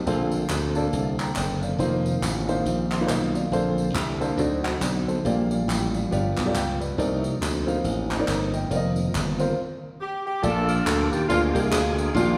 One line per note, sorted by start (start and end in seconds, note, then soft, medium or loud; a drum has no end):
0.00 4.35 A#3 medium
0.00 4.35 C4 medium
0.06 0.44 A#1 loud
0.06 0.72 A#2 medium
0.06 1.77 D3 medium
0.06 0.46 A#3 medium
0.06 0.46 D4 medium
0.06 1.78 A4 medium
0.06 0.46 A4 medium
0.06 0.46 C5 medium
0.06 tambourine medium
0.32 tambourine medium
0.49 0.87 D2 medium
0.49 clap loud
0.49 tambourine medium
0.75 1.05 A#3 medium
0.75 1.05 D4 medium
0.75 1.06 A4 medium
0.75 1.06 D5 medium
0.75 tambourine soft
0.93 1.30 C2 medium
0.93 tambourine medium
1.20 1.35 G5 medium
1.20 1.36 A#5 medium
1.20 clap medium
1.20 tambourine medium
1.36 1.73 F#1 medium
1.36 1.61 G5 medium
1.36 clap medium
1.36 tambourine loud
1.62 2.04 D5 medium
1.62 2.03 F5 medium
1.62 tambourine medium
1.78 2.16 F1 loud
1.78 3.50 D#3 medium
1.78 1.86 A3 medium
1.78 2.18 D#4 medium
1.78 3.50 F4 medium
1.78 2.19 F4 medium
1.78 2.19 C5 medium
1.78 tambourine medium
1.84 2.21 A#3 medium
2.06 tambourine medium
2.22 2.59 A1 medium
2.22 clap medium
2.22 tambourine loud
2.48 2.78 A#3 medium
2.48 2.78 D#4 medium
2.48 2.78 F4 medium
2.48 2.78 C5 medium
2.48 tambourine soft
2.65 3.02 A#1 medium
2.65 tambourine medium
2.92 3.09 C6 medium
2.92 clap medium
2.92 tambourine medium
3.00 3.34 A#3 medium
3.00 3.34 D#4 medium
3.00 3.34 F4 medium
3.00 3.06 B4 medium
3.07 3.46 B1 medium
3.07 3.10 C5 medium
3.07 3.34 D#5 medium
3.07 3.34 F5 medium
3.07 clap medium
3.07 tambourine medium
3.11 3.35 C5 soft
3.35 3.76 D5 medium
3.35 3.76 F5 medium
3.35 tambourine medium
3.51 3.89 A#1 medium
3.51 4.17 A#2 medium
3.51 4.38 D3 medium
3.51 3.91 A#3 medium
3.51 3.91 D4 medium
3.51 4.38 A4 medium
3.51 3.92 A4 medium
3.51 3.92 C5 medium
3.51 tambourine medium
3.78 tambourine medium
3.95 4.32 C2 medium
3.95 clap loud
3.95 tambourine loud
4.20 4.38 A#3 medium
4.20 4.39 D4 medium
4.20 4.39 A4 medium
4.20 4.39 C5 medium
4.20 tambourine soft
4.37 4.75 D2 medium
4.37 5.04 D3 medium
4.37 5.25 D3 medium
4.37 5.25 F#3 medium
4.37 4.68 C4 medium
4.37 5.25 C4 medium
4.37 4.68 D#4 medium
4.37 5.25 D#4 medium
4.37 4.68 F#4 medium
4.37 4.65 D5 medium
4.37 tambourine medium
4.64 4.81 D#5 soft
4.64 4.81 F#5 medium
4.64 clap medium
4.64 tambourine medium
4.81 5.18 B1 medium
4.81 5.07 D5 medium
4.81 clap loud
4.81 tambourine medium
5.08 5.49 A4 medium
5.08 5.49 C5 medium
5.08 tambourine medium
5.25 5.62 A#1 loud
5.25 5.90 A#2 medium
5.25 8.67 F3 medium
5.25 6.96 G3 medium
5.25 5.64 A#3 medium
5.25 6.10 A#3 medium
5.25 6.96 F4 medium
5.25 5.64 F4 medium
5.25 5.65 G4 medium
5.25 5.50 D5 medium
5.25 tambourine medium
5.51 5.68 D5 medium
5.51 5.68 F5 medium
5.51 tambourine medium
5.68 6.05 A1 medium
5.68 5.93 G5 medium
5.68 clap loud
5.68 tambourine loud
5.94 6.11 D5 soft
5.94 6.35 F5 medium
5.94 tambourine soft
6.11 6.34 G1 medium
6.11 6.76 G2 medium
6.11 6.40 B3 medium
6.11 6.98 B3 medium
6.11 6.41 F4 medium
6.11 6.41 G4 medium
6.11 6.41 D5 medium
6.11 tambourine medium
6.37 6.52 B1 medium
6.37 clap medium
6.37 tambourine medium
6.45 6.50 A3 medium
6.45 6.79 F4 medium
6.45 6.79 G4 medium
6.45 6.55 D5 medium
6.51 6.82 B3 medium
6.55 6.92 C#2 medium
6.55 6.79 G5 medium
6.55 clap loud
6.55 tambourine medium
6.80 7.21 B4 medium
6.80 6.98 D5 medium
6.80 tambourine medium
6.97 7.35 C2 loud
6.97 7.63 C3 medium
6.97 8.69 A#3 medium
6.97 7.37 C4 medium
6.97 9.55 C4 medium
6.97 8.69 D#4 medium
6.97 7.37 D#4 medium
6.97 7.37 A#4 medium
6.97 7.37 D5 medium
6.97 tambourine medium
7.24 tambourine medium
7.41 7.78 D2 medium
7.41 clap medium
7.41 tambourine medium
7.67 7.96 C4 medium
7.67 7.97 D#4 medium
7.67 7.97 A#4 medium
7.67 7.97 F5 medium
7.67 tambourine soft
7.84 8.21 A1 medium
7.84 tambourine medium
8.11 clap medium
8.11 tambourine medium
8.19 8.52 C4 medium
8.19 8.53 D#4 medium
8.19 8.53 A#4 medium
8.19 8.28 D5 medium
8.28 8.64 G1 medium
8.28 8.52 A#5 soft
8.28 8.52 D6 medium
8.28 clap medium
8.28 tambourine medium
8.54 8.75 D#5 medium
8.54 8.94 G5 medium
8.54 tambourine medium
8.70 9.07 F1 loud
8.70 9.56 D#3 medium
8.70 9.56 A#3 medium
8.70 9.09 C4 medium
8.70 9.56 F4 medium
8.70 9.09 F4 medium
8.70 9.10 A#4 medium
8.70 8.77 D5 medium
8.70 tambourine medium
8.76 9.12 D#5 medium
8.96 tambourine medium
9.15 9.51 G1 medium
9.15 clap medium
9.15 tambourine medium
9.39 9.57 C4 medium
9.39 9.57 F4 medium
9.39 9.57 A#4 medium
9.39 9.58 C5 medium
9.39 tambourine soft
10.01 10.24 G4 medium
10.26 10.42 G4 medium
10.42 10.80 A#1 loud
10.42 11.08 A#2 medium
10.42 12.38 A#3 medium
10.42 10.95 A#3 medium
10.42 10.95 D4 medium
10.42 11.26 D4 medium
10.42 10.95 F4 medium
10.42 11.26 F4 medium
10.42 10.95 A4 medium
10.42 10.69 A4 loud
10.42 10.95 D5 medium
10.42 12.14 F5 medium
10.42 11.28 A5 medium
10.42 12.14 D6 medium
10.42 tambourine medium
10.68 10.86 A#4 loud
10.68 tambourine medium
10.85 11.08 D2 loud
10.85 11.10 A4 loud
10.85 clap loud
10.85 tambourine loud
11.11 11.27 D#2 medium
11.11 11.29 G4 loud
11.11 tambourine medium
11.28 11.51 D2 loud
11.28 11.94 D3 medium
11.28 12.12 G#3 medium
11.28 11.50 A#3 medium
11.28 12.12 A#3 medium
11.28 11.50 D4 medium
11.28 11.40 F4 loud
11.28 11.50 F4 medium
11.28 11.50 G#4 medium
11.28 11.50 D5 medium
11.28 12.14 G#5 medium
11.28 tambourine medium
11.54 11.70 C2 medium
11.54 11.91 A#3 medium
11.54 11.92 D4 medium
11.54 11.92 F4 medium
11.54 11.62 G4 medium
11.54 11.92 G#4 medium
11.54 11.92 A#4 medium
11.54 tambourine medium
11.71 12.09 D2 medium
11.71 12.13 F4 medium
11.71 12.12 G#4 loud
11.71 clap loud
11.71 tambourine loud
11.98 tambourine medium
12.14 12.38 A#1 loud
12.14 12.38 A#2 medium
12.14 12.38 D#3 medium
12.14 12.38 A#3 medium
12.14 12.38 D4 medium
12.14 12.38 F4 loud
12.14 12.22 F#4 medium
12.14 12.38 D5 medium
12.14 12.38 G5 medium
12.14 12.38 D6 medium
12.14 tambourine medium
12.21 12.38 G4 medium